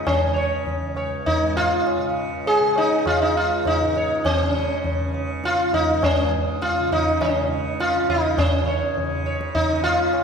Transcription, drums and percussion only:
0.07 tabla na, tabla ge
0.67 tabla tin, tabla ge
0.96 tabla na
1.27 tabla tin, tabla ge
1.87 tabla na
2.46 tabla tin
2.76 tabla na
3.06 tabla na, tabla ge
3.65 tabla na, tabla ge
3.96 tabla te
4.25 tabla na, tabla ge
4.84 tabla tin, tabla ge
5.14 tabla na
5.44 tabla te
5.73 tabla tin, tabla ge
6.03 tabla na, tabla ge
6.62 tabla te
6.92 tabla tin, tabla ge
7.21 tabla na, tabla ge
7.80 tabla te
8.09 tabla tin, tabla ge
8.38 tabla na, tabla ge
8.97 tabla tin, tabla ge
9.26 tabla na
9.41 tabla ke
9.55 tabla tin, tabla ge
10.13 tabla na

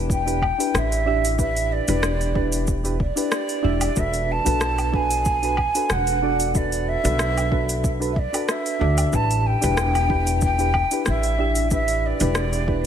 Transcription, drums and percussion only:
0.10 kick, shaker
0.28 open hi-hat, shaker
0.42 kick, low woodblock
0.60 open hi-hat, shaker
0.75 cross-stick, shaker
0.92 open hi-hat, shaker
1.25 open hi-hat, shaker
1.39 kick, shaker
1.57 open hi-hat, shaker
1.88 open hi-hat, shaker
2.03 cross-stick, shaker
2.21 open hi-hat, shaker
2.35 kick
2.52 open hi-hat, shaker
2.67 kick, shaker
2.85 open hi-hat, shaker
3.00 kick
3.17 open hi-hat, shaker
3.32 cross-stick, shaker
3.49 open hi-hat, shaker
3.81 open hi-hat, low woodblock, shaker
3.96 kick, shaker
4.14 open hi-hat, shaker
4.46 open hi-hat, shaker
4.61 cross-stick, shaker
4.78 open hi-hat, low woodblock, shaker
4.94 kick
5.11 open hi-hat, shaker
5.25 kick, shaker
5.43 open hi-hat, shaker
5.57 kick, low woodblock
5.75 open hi-hat, shaker
5.90 cross-stick, shaker
6.07 open hi-hat, shaker
6.40 open hi-hat, shaker
6.55 kick, shaker
6.72 open hi-hat, shaker
7.05 open hi-hat, shaker
7.19 cross-stick, shaker
7.38 open hi-hat, low woodblock, shaker
7.52 kick
7.69 open hi-hat, shaker
7.84 kick, shaker
8.02 open hi-hat, shaker
8.16 kick
8.34 open hi-hat, low woodblock, shaker
8.49 cross-stick, shaker
8.66 open hi-hat, shaker
8.98 open hi-hat, low woodblock, shaker
9.13 kick, shaker
9.31 open hi-hat, shaker
9.62 open hi-hat, shaker
9.77 cross-stick, shaker
9.95 open hi-hat, low woodblock, shaker
10.10 kick
10.27 open hi-hat, shaker
10.41 kick, shaker
10.59 open hi-hat, shaker
10.74 kick, low woodblock
10.91 open hi-hat, shaker
11.06 cross-stick, shaker
11.23 open hi-hat, shaker
11.55 open hi-hat, shaker
11.71 kick, shaker
11.88 open hi-hat, shaker
12.20 open hi-hat, shaker
12.35 cross-stick, shaker
12.53 open hi-hat, shaker
12.68 kick

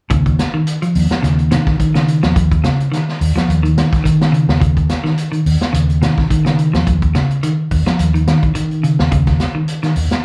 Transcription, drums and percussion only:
0.10 kick, closed hi-hat
0.26 kick, closed hi-hat
0.39 snare, closed hi-hat
0.67 closed hi-hat
0.82 closed hi-hat
0.95 open hi-hat
1.11 snare, closed hi-hat
1.24 snare, closed hi-hat
1.39 closed hi-hat
1.51 snare, closed hi-hat
1.67 kick, snare
1.79 kick, closed hi-hat
1.95 snare, closed hi-hat
2.08 closed hi-hat
2.23 snare, closed hi-hat
2.36 kick, closed hi-hat
2.51 kick, closed hi-hat
2.64 snare, closed hi-hat
2.80 closed hi-hat
2.93 snare, closed hi-hat
3.09 snare
3.21 open hi-hat
3.37 snare, closed hi-hat
3.50 closed hi-hat
3.65 closed hi-hat
3.78 snare, closed hi-hat
3.93 kick, snare, closed hi-hat
4.05 kick, closed hi-hat
4.21 snare, closed hi-hat
4.34 closed hi-hat
4.49 snare
4.62 kick, closed hi-hat
4.77 kick, closed hi-hat
4.89 snare, closed hi-hat
5.05 snare
5.17 closed hi-hat
5.33 closed hi-hat
5.46 open hi-hat
5.61 snare, closed hi-hat
5.74 closed hi-hat
5.89 closed hi-hat
6.02 snare, closed hi-hat
6.18 kick, snare
6.30 kick, closed hi-hat
6.46 snare, closed hi-hat
6.59 closed hi-hat
6.74 snare, closed hi-hat
6.87 kick, closed hi-hat
7.02 kick, closed hi-hat
7.15 snare, closed hi-hat
7.31 closed hi-hat
7.43 closed hi-hat
7.71 kick, open hi-hat
7.87 snare, closed hi-hat
7.99 closed hi-hat
8.15 closed hi-hat
8.27 snare, closed hi-hat
8.43 kick, closed hi-hat
8.55 closed hi-hat
8.71 closed hi-hat
8.84 closed hi-hat
8.99 snare
9.11 kick, closed hi-hat
9.27 kick, snare, closed hi-hat
9.40 snare, closed hi-hat
9.68 closed hi-hat
9.83 snare, closed hi-hat
9.96 open hi-hat
10.11 snare, closed hi-hat

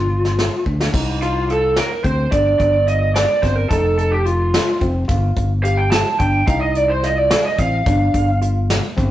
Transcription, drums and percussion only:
0.25 snare
0.39 snare
0.66 kick
0.80 snare
0.94 kick, crash
1.22 closed hi-hat
1.50 closed hi-hat
1.76 snare, closed hi-hat
2.04 kick, closed hi-hat
2.32 kick, closed hi-hat
2.60 kick, closed hi-hat
2.88 closed hi-hat
3.16 snare, closed hi-hat
3.43 kick, snare, closed hi-hat
3.71 kick, closed hi-hat
3.98 closed hi-hat
4.26 closed hi-hat
4.54 snare, closed hi-hat
4.81 kick, closed hi-hat
5.09 kick, closed hi-hat
5.36 kick, closed hi-hat
5.65 closed hi-hat
5.92 snare, closed hi-hat
6.20 kick, closed hi-hat
6.47 kick, closed hi-hat
6.75 closed hi-hat
7.04 snare, closed hi-hat
7.31 snare, closed hi-hat
7.58 kick, closed hi-hat
7.86 kick, closed hi-hat
8.14 kick, closed hi-hat
8.42 closed hi-hat
8.70 snare, closed hi-hat
8.98 kick, closed hi-hat

